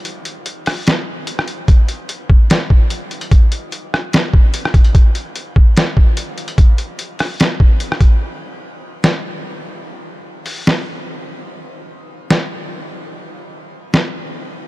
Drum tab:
HH |x-x-x-o-x---x-x-|x-x-x---x---x-xx|x-x-x---x---x-xx|x-x-x---x---x-xx|
SD |------r-o----r--|--------o-------|------r-o----r--|--------o-------|
BD |----------------|o-----o---o-----|o---------o---o-|o-----o---o-----|

HH |x-x-x-o-x---x-x-|----------------|------o---------|----------------|
SD |------r-o----r--|--------o-------|--------o-------|--------o-------|
BD |o---------o---o-|----------------|----------------|----------------|

HH |----------------|
SD |--------o-------|
BD |----------------|